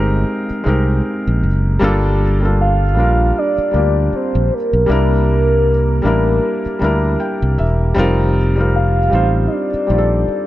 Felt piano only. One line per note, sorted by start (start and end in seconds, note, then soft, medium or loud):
0.00 0.64 G#3 medium
0.00 0.65 C4 medium
0.00 0.66 D#4 medium
0.00 0.67 G4 medium
0.00 0.68 A#4 loud
0.64 1.46 G#3 medium
0.64 1.47 C4 medium
0.64 1.47 D#4 medium
0.64 1.48 G4 medium
0.68 1.48 A#4 medium
1.79 2.21 G3 loud
1.79 2.22 A#3 loud
1.79 2.22 D4 loud
1.79 2.23 F4 loud
1.84 2.23 A4 loud
2.40 2.81 G3 medium
2.40 2.82 A#3 medium
2.40 2.83 D4 medium
2.40 2.83 F4 medium
2.45 2.84 A4 medium
2.95 3.52 G3 medium
2.95 3.53 A#3 medium
2.95 3.53 D4 medium
2.95 3.54 F4 medium
3.00 3.54 A#4 medium
3.71 4.54 G3 medium
3.71 4.54 A#3 medium
3.71 4.55 D4 medium
3.75 4.56 F4 medium
3.75 4.56 G4 medium
4.86 5.69 G3 medium
4.86 5.69 A#3 medium
4.86 5.70 D4 medium
4.86 5.71 E4 medium
4.91 5.71 A#4 loud
6.02 6.59 G3 medium
6.02 6.60 A#3 medium
6.02 6.61 D4 medium
6.02 6.61 E4 medium
6.07 6.62 A#4 medium
6.79 7.61 G3 medium
6.79 7.62 A#3 medium
6.79 7.63 D4 medium
6.79 7.63 E4 medium
6.79 7.17 A#5 medium
6.84 7.64 A#4 medium
7.20 7.56 G5 medium
7.58 7.94 E5 medium
7.94 8.36 G3 loud
7.94 8.37 C4 loud
7.94 8.37 D#4 loud
7.94 8.38 F4 loud
7.99 8.39 A#4 loud
8.55 8.97 G3 medium
8.55 8.97 C4 medium
8.55 8.98 D#4 medium
8.55 8.98 F4 medium
8.60 8.99 A#4 medium
9.10 9.67 G3 medium
9.10 9.68 C4 medium
9.10 9.68 D#4 medium
9.10 9.69 F4 medium
9.15 9.70 C5 medium
9.87 10.47 G3 medium
9.87 10.47 C4 medium
9.87 10.47 D#4 medium
9.87 10.47 F4 medium
9.92 9.98 G4 medium
9.98 10.47 A4 medium